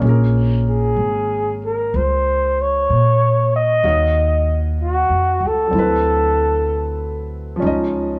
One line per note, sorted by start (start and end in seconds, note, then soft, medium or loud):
0.00 0.93 A#1 medium
0.00 3.81 A#3 soft
0.00 3.83 C#4 soft
0.00 0.12 D#5 soft
0.05 3.85 G#4 soft
0.05 3.87 A#4 medium
0.70 1.59 G#4 medium
0.96 1.89 G#1 medium
1.66 1.98 A#4 medium
1.94 2.85 C#2 medium
1.94 2.63 C5 medium
2.61 3.54 C#5 medium
2.90 3.80 A#2 medium
3.56 4.58 D#5 medium
3.83 5.06 D#2 medium
3.83 5.74 D#4 soft
3.83 5.73 F#4 soft
3.83 5.74 C#5 soft
3.83 5.73 F5 soft
4.83 5.49 F#4 medium
5.09 5.39 F2 soft
5.40 5.70 C#2 medium
5.47 7.33 A4 medium
5.67 7.59 F#3 soft
5.67 7.61 C4 soft
5.73 7.58 D2 medium
5.73 7.63 E4 soft
5.79 7.65 B4 soft
7.56 8.19 F3 medium
7.56 8.19 C#4 soft
7.62 8.19 C#2 medium
7.62 8.19 D#4 soft
7.67 8.19 D#5 medium